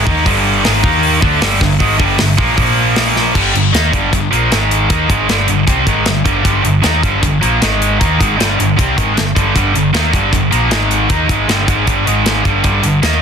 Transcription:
0.05 D#2 D#3 A#3 D#4, kick
0.25 G1 G2 D3 G3, kick, open hi-hat
0.64 G#1 G#2 D#3 G#3, snare, open hi-hat
0.83 D#2 D#3 A#3 D#4, kick
1.03 open hi-hat
1.21 D2 D3 A3 D4, kick
1.41 G1 G2 D3 G3, snare, open hi-hat
1.61 G1 G2 D3, kick, snare
1.80 G#1 G#2 D#3 G#3, kick, open hi-hat
1.98 G1 G2 D3 G3, kick
2.18 G1 G2 D3, snare, open hi-hat
2.38 A#1 A#2 F3 A#3, kick
2.56 A#1 A#2 F3 A#3, kick, open hi-hat
2.96 snare, open hi-hat
3.16 snare
3.34 G1 G2 D3 G3, kick, crash
3.54 G1 G2 D3, closed hi-hat
3.73 D#2 D#3 A#3 D#4, snare, closed hi-hat
3.92 G1 G2 D3 G3, kick, closed hi-hat
4.12 G1 G2 D3, kick, closed hi-hat
4.31 A#1 A#2 F3 A#3, closed hi-hat
4.51 G#1 G#2 D#3 G#3, snare, closed hi-hat
4.71 closed hi-hat
4.90 D#2 D#3 A#3 D#4, kick, closed hi-hat
5.09 G#1 G#2 D#3 G#3, kick, closed hi-hat
5.29 G1 G2 D3 G3, snare, closed hi-hat
5.48 G1 G2 D3, closed hi-hat
5.67 C2 C3 G3 C4, kick, closed hi-hat
5.86 G#1 G#2 D#3 G#3, kick, closed hi-hat
6.06 G1 G2 D3, snare, closed hi-hat
6.25 G1 G2 D3 G3, kick, closed hi-hat
6.43 G1 G2 D3 G3, kick, closed hi-hat
6.63 G1 G2 D3, closed hi-hat
6.82 D#2 D#3 A#3 D#4, snare, closed hi-hat
7.02 G1 G2 D3 G3, kick, closed hi-hat
7.21 G1 G2 D3, kick, closed hi-hat
7.41 A#1 A#2 F3 A#3, closed hi-hat
7.61 G#1 G#2 D#3 G#3, snare, closed hi-hat
7.82 closed hi-hat
8.00 D#2 D#3 A#3 D#4, kick, closed hi-hat
8.19 G#1 G#2 D#3 G#3, kick, closed hi-hat
8.37 G1 G2 D3 G3, snare, closed hi-hat
8.58 G1 G2 D3, closed hi-hat
8.76 C2 C3 G3 C4, kick, closed hi-hat
8.96 G#1 G#2 D#3 G#3, kick, closed hi-hat
9.15 G2 D3, snare, closed hi-hat
9.19 G1
9.35 G1 G2 D3 G3, kick, closed hi-hat
9.54 G1 G2 D3 G3, kick, closed hi-hat
9.74 G1 G2 D3, closed hi-hat
9.93 D#2 D#3 A#3 D#4, snare, closed hi-hat
10.12 G1 G2 D3 G3, kick, closed hi-hat
10.32 G1 G2 D3, kick, closed hi-hat
10.51 A#1 A#2 F3 A#3, closed hi-hat
10.71 G#2 D#3 G#3, snare, closed hi-hat
10.91 closed hi-hat
11.09 D#2 D#3 A#3 D#4, kick, closed hi-hat
11.28 G#1 G#2 D#3 G#3, kick, closed hi-hat
11.48 G1 G2 D3 G3, snare, closed hi-hat
11.68 G#1 G#2 D#3 G#3, kick, closed hi-hat
11.85 G1 G2 D3 G3, kick, closed hi-hat
12.06 G#1 G#2 D#3 G#3, closed hi-hat
12.26 snare, closed hi-hat
12.45 G1 G2 D3 G3, kick, closed hi-hat
12.63 G1 G2 D3 G3, kick, closed hi-hat
12.83 G1 G2 D3, closed hi-hat
13.02 D#2 D#3 A#3 D#4, snare, closed hi-hat

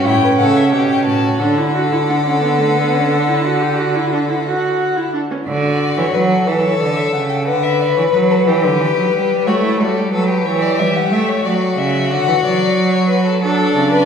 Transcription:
Already playing: C#4
0.05 A2 E4 G5
0.23 B4
0.38 C#3 A4 F#5
0.57 E5
0.72 B2 G4 F#5
0.89 G5
1.05 A2 F#4 A5
1.40 D3 D4 A4 F#5
1.57 E4
1.75 F#4
1.92 E4
2.09 D4
2.26 C#4
2.43 B3
2.59 A3
2.77 B3
2.94 C#4
3.10 D4
3.28 E4
3.44 F#4
3.61 G4
3.78 F#4
3.95 E4
4.12 D4
4.30 E4
4.46 F#4
4.97 E4
5.14 D4
5.31 C#4
5.47 D3 F#4 D5
5.98 E3 C#5
6.14 F#3 B4
6.30 A4
6.46 E3 A4 B4
6.63 C#5
6.80 D3 D5
6.96 E5
7.13 C#3 F#5
7.29 G5
7.46 D3 B4 F#5
7.63 E5
7.80 D5
7.96 E3 C#5
8.14 F#3 B4
8.31 A4
8.47 E3 G4 B4
8.64 D3
8.80 E3
8.97 F#3
9.13 G3
9.46 A3 F#4 C#5
9.63 E4
9.80 G3 F#4 A4
9.97 G4
10.12 F#3 A4 B4
10.29 G4
10.46 E3 C#5
10.62 D5
10.79 G3 E5
10.96 F#5
11.12 A3 E5
11.29 C#5
11.45 F#3 F#4 D5
11.78 C#3 E5
12.10 D3 F#5
12.27 E3
12.44 F#3 D5
12.94 C#5
13.10 B4
13.26 A4
13.42 F#3 D4 A4 D5
13.75 C#3
13.91 B4

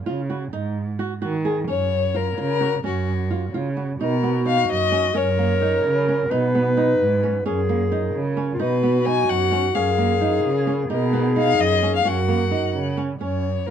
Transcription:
0.06 C#3 F4
0.30 F#4
0.53 G#2 D#4
0.99 F#4
1.22 D#3 F#4
1.45 G#4
1.68 F#2 C#4 C#5
2.14 F4 A#4
2.37 C#3 F4 A#4
2.61 F#4
2.84 F#2 C#4 F#4
3.31 F4
3.53 C#3 F4
3.77 F#4
3.98 B2 A#3 B3 D#4 F#4 A#4
4.23 B3
4.45 D#4 F5
4.69 F#2 D#5
4.92 C#4
5.15 F#2 F#3 C#4 F4 G#4 A#4 C#5
5.38 A#3
5.62 D#4
5.85 C#3
6.08 C#4
6.30 B2 F#3 B3 D#4 B4
6.55 B3
6.77 D#4
7.00 G#2
7.23 C#4
7.44 F#2 F#3 C#4 F4 G#4 A#4
7.69 A#3
7.92 D#4
8.15 C#3
8.37 C#4
8.54 F4
8.59 B2 F#3 B3 D#4 F#4 B4
8.83 B3
9.06 D#4 G#5
9.29 F#2 F#5
9.51 C#4
9.74 F#2 F#3 C#4 F4 G#4 A#4 F5
9.98 A#3
10.21 D#4
10.44 C#3
10.67 C#4
10.89 B2 A#3 B3 D#4 G#4 A#4
11.13 B3
11.36 D#4 F5
11.59 F#2 D#5
11.83 C#4
11.96 F5
12.04 F#2 F#3 C#4 F#4 G#4 A#4 F#5
12.28 A#3
12.51 D#4
12.75 C#3
12.97 C#4
13.20 F#2 C#4 C#5
13.66 F4 A#4

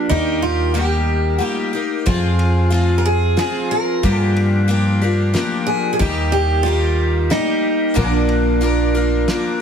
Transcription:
Already playing: D4 G4
0.09 D#2 D#3 G3 A#3 D#4 G4
0.42 F4
0.74 G3 A#3 D#4 G4
1.39 G3 A#3 D#4 F4 G4
1.73 A#3 D#4 G4
2.06 F2 F3 C4 F4 G#4, kick, ride
2.39 ride
2.70 F3 C4 F4 G#4, ride
2.98 A#4
3.06 G#4
3.37 F3 C4 F4 G#4, snare, ride
3.71 A#4
4.03 G2 D3 F3 A#3 D4 G4, kick, ride
4.18 G#4
4.37 ride
4.68 F3 A#3 D4 G4, ride
5.02 F3 A#3 D4 G4
5.34 F3 A#3 D4 G4, snare, ride
5.67 G#4
5.93 G#4
5.99 D#2 D#3 G3 A#3 D#4 G4, kick, ride
6.32 G4, ride
6.63 G3 A#3 F4, ride
6.67 D#4 G4
7.30 G3 A#3 D#4 G4, snare, ride
7.94 A#1 A#2 D3 F3 A#3 D4 A#4, kick, ride
8.29 ride
8.61 F3 A#3 D4 A#4, ride
8.95 F3 A#3 D4 A#4
9.28 F3 A#3 D4 A#4, snare, ride

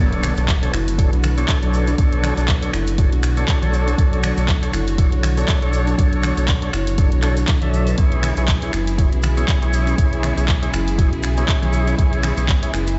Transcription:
0.00 B1 D3 F#3 A3 B3 D4 F#4 A4 C#5, impact
0.13 closed hi-hat
0.23 B3, finger snap, mid tom, cabasa
0.37 B1 D4 A4 C#5, closed hi-hat, cabasa
0.48 B3, kick, clap, closed hi-hat, cabasa
0.62 D4 A4 C#5, closed hi-hat
0.73 F#1 E4, finger snap, cabasa
0.88 closed hi-hat, cabasa
0.98 D4 F#4 A4 C#5, kick, closed hi-hat, cabasa
1.13 B1 D4, closed hi-hat
1.23 finger snap, mid tom, cabasa
1.37 B3 D4 A4 C#5, closed hi-hat, cabasa
1.48 kick, clap, closed hi-hat, cabasa
1.62 B1 F#3 D4 A4 C#5, closed hi-hat
1.74 cabasa
1.87 D4, closed hi-hat, cabasa
1.98 B1 B3 D4 A4 C#5, kick, closed hi-hat, cabasa
2.12 closed hi-hat
2.23 B3, finger snap, mid tom, cabasa
2.37 B1 D4 A4 C#5, closed hi-hat, cabasa
2.48 B3, kick, clap, closed hi-hat, cabasa
2.62 D4 A4 C#5, closed hi-hat
2.73 F#1 E4, finger snap, cabasa
2.87 closed hi-hat, cabasa
2.98 D4 F#4 A4 C#5, kick, closed hi-hat, cabasa
3.12 B1 D4, closed hi-hat
3.23 finger snap, cabasa
3.37 B3 D4 A4 C#5, closed hi-hat, cabasa
3.48 kick, clap, closed hi-hat, cabasa
3.62 B1 F#3 D4 A4 C#5, closed hi-hat, mid tom
3.74 cabasa
3.88 D4, closed hi-hat, cabasa
3.98 B1 B3 D4 A4 C#5, kick, closed hi-hat, cabasa
4.13 closed hi-hat
4.23 B3, finger snap, mid tom, cabasa
4.37 B1 D4 A4 C#5, closed hi-hat, cabasa
4.48 B3, kick, clap, closed hi-hat, cabasa
4.62 D4 A4 C#5, closed hi-hat
4.73 F#1 E4, finger snap, cabasa
4.87 closed hi-hat, cabasa
4.98 D4 F#4 A4 C#5, kick, closed hi-hat, cabasa
5.12 B1 D4, closed hi-hat
5.23 finger snap, mid tom, cabasa
5.37 B3 D4 A4 C#5, closed hi-hat, cabasa
5.48 kick, clap, closed hi-hat, cabasa
5.62 B1 F#3 D4 A4 C#5, closed hi-hat
5.73 cabasa
5.87 D4, closed hi-hat, cabasa
5.98 B1 B3 D4 A4 C#5, kick, closed hi-hat, cabasa
6.13 closed hi-hat
6.23 B3, finger snap, mid tom, cabasa
6.37 B1 D4 A4 C#5, closed hi-hat, cabasa
6.48 B3, kick, clap, closed hi-hat, cabasa
6.62 D4 A4 C#5, closed hi-hat
6.73 F#1 E4, finger snap, cabasa
6.87 closed hi-hat, cabasa
6.98 D4 F#4 A4 C#5, kick, closed hi-hat, cabasa
7.12 B1 D4, closed hi-hat
7.22 D4 A4 C#5, finger snap, clap, cabasa
7.37 D4, closed hi-hat, cabasa
7.48 kick, clap, closed hi-hat, cabasa
7.62 B1 F#3 D4 A4 E5, closed hi-hat, mid tom
7.74 cabasa
7.87 B4, closed hi-hat, cabasa
7.98 B1 C#3 E3 G#3 B3 E4 G#4 C#5, kick, closed hi-hat, cabasa
8.12 closed hi-hat
8.23 B3, finger snap, mid tom, cabasa
8.37 B1 E4 G#4 C#5, closed hi-hat, cabasa
8.48 B3, kick, clap, closed hi-hat, cabasa
8.62 E4 G#4 C#5, closed hi-hat
8.73 F#1 E4, finger snap, cabasa
8.87 closed hi-hat, cabasa
8.98 E4 F#4 G#4 C#5, kick, closed hi-hat, cabasa
9.12 B1 C#4, closed hi-hat
9.23 finger snap, mid tom, cabasa
9.37 B3 E4 G#4 C#5, closed hi-hat, cabasa
9.48 kick, clap, closed hi-hat, cabasa
9.62 B1 F#3 E4 G#4 C#5, closed hi-hat
9.73 cabasa
9.87 C#4, closed hi-hat, cabasa
9.98 B1 B3 E4 G#4 C#5, kick, closed hi-hat, cabasa
10.13 closed hi-hat
10.23 B3, finger snap, mid tom, cabasa
10.37 B1 E4 G#4 C#5, closed hi-hat, cabasa
10.48 B3, kick, clap, closed hi-hat, cabasa
10.62 E4 G#4 C#5, closed hi-hat
10.73 F#1 E4, finger snap, cabasa
10.87 closed hi-hat, cabasa
10.98 E4 F#4 G#4 C#5, kick, closed hi-hat, cabasa
11.12 B1 C#4, closed hi-hat
11.23 finger snap, cabasa
11.37 B3 E4 G#4 C#5, closed hi-hat, cabasa
11.48 kick, clap, closed hi-hat, cabasa
11.62 B1 F#3 E4 G#4 C#5, closed hi-hat, mid tom
11.73 cabasa
11.87 C#4, closed hi-hat, cabasa
11.98 B1 B3 E4 G#4 C#5, kick, closed hi-hat, cabasa
12.13 closed hi-hat
12.23 B3, finger snap, mid tom, cabasa
12.37 B1 E4 G#4 C#5, closed hi-hat, cabasa
12.48 B3, kick, clap, closed hi-hat, cabasa
12.62 E4 G#4 C#5, closed hi-hat
12.73 F#1 E4, finger snap, cabasa
12.87 closed hi-hat, cabasa

